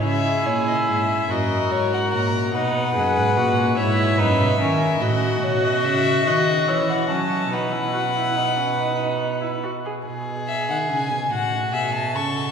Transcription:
<<
  \new Staff \with { instrumentName = "Violin" } { \time 6/8 \key cis \dorian \tempo 4. = 48 e''8 cis''16 dis''16 e''8 dis''8 cis''16 fis''16 ais''8 | fis''4. e''4. | \key b \mixolydian dis''8 cis''16 dis''16 e''8 dis''8 cis''16 fis''16 a''8 | fis''2~ fis''8 r8 |
r8 e''16 fis''16 gis''8 fis''8 e''16 a''16 cis'''8 | }
  \new Staff \with { instrumentName = "Violin" } { \time 6/8 \key cis \dorian gis'4. ais'4. | b'4. cis''8 b'8 ais'8 | \key b \mixolydian fis'2. | b'2~ b'8 r8 |
gis'4. fis'8 gis'8 a'8 | }
  \new Staff \with { instrumentName = "Viola" } { \time 6/8 \key cis \dorian e'4. fis'4. | dis'8 gis'8 fis'8 e'8 dis'8 cis'8 | \key b \mixolydian fis'4. fis'8 e'8 cis'8 | dis'16 e'16 fis'16 e'16 dis'16 cis'16 dis'8. e'16 fis'16 gis'16 |
r2. | }
  \new Staff \with { instrumentName = "Cello" } { \clef bass \time 6/8 \key cis \dorian cis8 ais,8 gis,8 fis,8 gis,8 ais,8 | b,8 fis,16 gis,16 ais,8 gis,8 fis,16 b,16 dis8 | \key b \mixolydian a,8 b,8 cis8 dis8 e8 fis8 | b,2~ b,8 r8 |
b,8. dis16 cis16 b,16 a,8 b,8 cis8 | }
>>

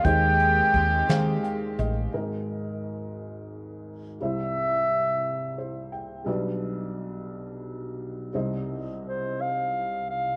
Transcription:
<<
  \new Staff \with { instrumentName = "Clarinet" } { \time 6/8 \key aes \major \tempo 4. = 58 g''2 r4 | r2. | e''2~ e''8 r8 | r2. |
r4 c''8 f''4 f''8 | }
  \new Staff \with { instrumentName = "Felt piano" } { \time 6/8 \key aes \major << { r2 g''8 ees''8 | r2. | r2 c''8 g''8 | r2. |
r2. | } \\ { <aes g' c'' ees''>4 r8 <aes g' c'' f''>4 r8 | <aes ees' bes' ees''>2. | <g e' c'' e''>2. | <g d' b' d''>2. |
<g ees' c'' ees''>2. | } >> }
  \new Staff \with { instrumentName = "Felt piano" } { \clef bass \time 6/8 \key aes \major <ees, ees>2. | <aes,, aes,>2. | <c, c>2. | <b,, b,>2. |
<c, c>2. | }
  \new Staff \with { instrumentName = "String section" } { \time 6/8 \key aes \major <ees aes c' g'>2. | r2. | r2. | r2. |
r2. | }
  \new Staff \with { instrumentName = "Fretless electric bass" } { \clef bass \time 6/8 \key aes \major ees,4 ees,8 ees8 r8 a,,8 | r2. | r2. | r2. |
r2. | }
  \new DrumStaff \with { instrumentName = "Drums" } \drummode { \time 6/8 <hh bd>8 hh8 <hh bd>8 <hh sn>8 hh8 hh8 | r4. r4. | r4. r4. | r4. r4. |
r4. r4. | }
>>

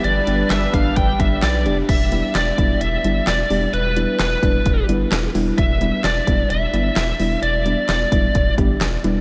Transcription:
<<
  \new Staff \with { instrumentName = "Lead electric guitar" } { \time 4/4 \key e \phrygian \tempo 4 = 130 d''4 e''8 f''8 g''8 e''8 d''8. r16 | e''4 d''4 e''4 d''4 | b'4 b'4. r4. | e''4 d''4 e''4 e''4 |
d''4 d''4. r4. | }
  \new Staff \with { instrumentName = "Analog synth pad" } { \time 4/4 \key e \phrygian <g d' b'>1 | r1 | r1 | r1 |
r1 | }
  \new Staff \with { instrumentName = "Synth pluck" } { \time 4/4 \key e \phrygian r8 <g b d' g'>8 r8 <g b d' g'>8 r8 <g b d' g'>8 r8 <g b d' g'>8 | r8 <g b d' e'>8 r8 <g b d' e'>8 r8 <g b d' e'>8 r8 <g b d' g'>8 | r8 <g b d' e'>8 r8 <g b d' e'>8 r8 <g b d' e'>8 r8 <g b d' e'>8 | r8 <g b d' e'>8 r8 <g b d' e'>8 r8 <g b d' e'>8 r8 <g b d' e'>8 |
r8 <g b d' e'>8 r8 <g b d' e'>8 r8 <g b d' g'>8 r8 <g b d' e'>8 | }
  \new Staff \with { instrumentName = "Analog synth bass" } { \clef bass \time 4/4 \key e \phrygian g,,8 g,,8 g,,8 g,,8 g,,8 g,,8 b,,8 f,,8 | e,,4 e,,8 e,,8 e,,8 g,,8 e,,8 e,,8 | e,,4 e,,8 e,,8 e,,8 g,,8 e,,8 e,,8 | e,,4 e,,8 e,,8 e,,8 g,,8 e,,8 e,,8 |
e,,4 e,,8 e,,8 e,,8 g,,8 e,,8 e,,8 | }
  \new DrumStaff \with { instrumentName = "Drums" } \drummode { \time 4/4 hh8 hh8 <hc hh sn>8 <hh bd>8 <hh bd>8 <hh bd>8 <hc hh sn>8 hh8 | <cymc hh bd>8 hh8 <hc hh sn>8 <hh bd>8 hh8 hh8 <hc hh sn>8 hho8 | hh8 hh8 <hc hh sn>8 <hh bd>8 <hh bd>8 hh8 <hc hh sn>8 hho8 | <hh bd>8 hh8 <hc hh sn>8 <hh bd>8 hh8 hh8 <hc hh sn>8 hho8 |
hh8 hh8 <hc hh sn>8 <hh bd>8 <hh bd>8 <hh bd>8 <hc hh sn>8 hh8 | }
>>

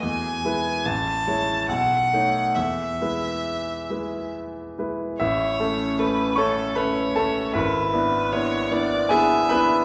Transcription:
<<
  \new Staff \with { instrumentName = "Violin" } { \time 3/4 \key e \major \tempo 4 = 75 gis''4 a''4 fis''4 | e''2 r4 | \key a \major cis''4 b'8 a'8 cis''4 | b'4 cis''8 d''8 e''4 | }
  \new Staff \with { instrumentName = "Grand piano" } { \time 3/4 \key e \major << { r2. | r2. | \key a \major <e' e''>4. <cis'' cis'''>8 <b' b''>8 <a' a''>8 | <e' e''>2 <gis' gis''>8 <b' b''>8 | } \\ { e,8 <gis e' b'>8 a,,8 <gis e' cis''>8 b,,8 <a dis' cis''>8 | e,8 <gis e' b'>4 <gis e' b'>4 <gis e' b'>8 | a,,8 <a cis' a'>8 <a cis' a'>8 <a cis' a'>8 <a cis' a'>8 <a cis'>8 | gis,,8 <b d' e'>8 <b d' e'>8 <b d' e'>8 <b d' e'>8 <b d' e'>8 | } >> }
>>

